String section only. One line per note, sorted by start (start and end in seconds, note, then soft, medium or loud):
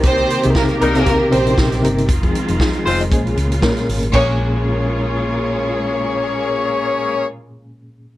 0.00 2.04 D#3 medium
0.00 2.05 A#3 medium
0.00 3.08 C4 medium
0.00 2.06 G4 loud
2.08 3.10 D#3 medium
2.08 4.11 G#3 medium
2.08 3.09 F4 medium
3.10 4.12 C#3 medium
3.10 4.12 A#3 medium
3.10 4.12 F4 medium
4.14 7.25 C#3 medium
4.14 7.25 G#3 medium
4.14 7.25 A#3 medium
4.14 7.25 F4 medium